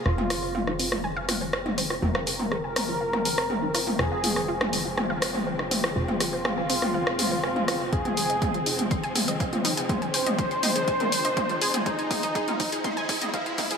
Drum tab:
HH |--o---o---o---o-|--o---o---o---o-|--o---o---o---o-|--o---o---o---o-|
SD |r-r--r-r--r-r--r|-r--r-r--r-r--r-|r--r-r--r-r--r-r|--r-r--r-r--r-r-|
T2 |-o--o--o--o--o--|o--o--o--o--o--o|--o--o--o--o--o-|-o--o--o--o--o--|
BD |----------------|----------------|----------------|----------------|

HH |xxoxxxoxxxoxxxox|xxoxxxoxxxoxxxox|xxoxxxoxxxoxxxox|
SD |----------------|----------------|----------------|
T2 |-o--o--o--o--o--|o--o--o--o--o--o|--o--o--o--o--o-|
BD |o---o---o---o---|o---o---o---o---|o-o-o-o-o-o-o-o-|